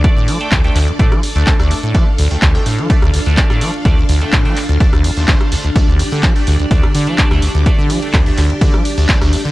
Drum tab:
HH |x-oxxxoxxxoxxxox|x-oxxxoxxxoxxxox|x-oxxxoxxxoxxxox|x-oxxxoxxxoxxxox|
CP |----x-x-----x---|----x-------x---|----x-x-----x---|----x-------x---|
SD |---------r---r--|---------r---r--|---------r---r--|---------r---r--|
BD |o---o---o---o---|o---o---o---o---|o---o---o---o---|o---o---o---o---|

HH |x-oxxxoxxxoxxxox|
CP |----x-x-----x---|
SD |---------r---r--|
BD |o---o---o---o---|